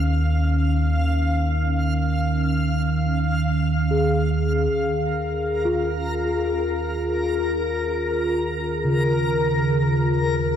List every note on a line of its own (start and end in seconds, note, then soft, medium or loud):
0.00 4.70 D#2 medium
0.00 4.71 D#3 medium
0.00 6.91 C#4 soft
0.00 4.73 F5 medium
3.91 5.90 G#4 medium
4.71 10.56 D#2 medium
4.71 10.56 D#3 medium
4.71 10.56 A#4 medium
5.65 10.56 F4 medium
8.84 10.56 C#3 medium